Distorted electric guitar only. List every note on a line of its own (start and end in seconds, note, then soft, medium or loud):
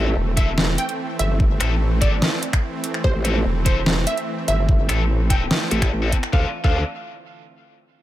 0.37 0.48 C4 medium
0.37 0.48 E4 medium
0.37 0.48 A4 loud
1.60 1.71 C4 medium
1.60 1.71 E4 medium
1.60 1.71 A4 medium
2.01 2.12 C4 medium
2.01 2.12 E4 medium
2.01 2.12 A4 loud
3.25 3.36 C4 medium
3.25 3.36 E4 medium
3.25 3.36 A4 medium
3.65 3.77 C4 medium
3.65 3.77 E4 medium
3.65 3.77 A4 loud
4.89 5.00 C4 medium
4.89 5.00 E4 medium
4.89 5.00 A4 medium
5.30 5.41 C4 medium
5.30 5.41 E4 medium
5.30 5.41 A4 loud
5.71 5.88 C4 medium
5.71 5.88 E4 medium
5.71 5.88 A4 medium
6.02 6.13 C4 medium
6.02 6.13 E4 medium
6.02 6.13 A4 loud
6.33 6.45 D4 medium
6.33 6.45 F4 medium
6.33 6.45 A4 medium
6.64 6.79 D4 medium
6.64 6.79 F4 medium
6.64 6.79 A4 loud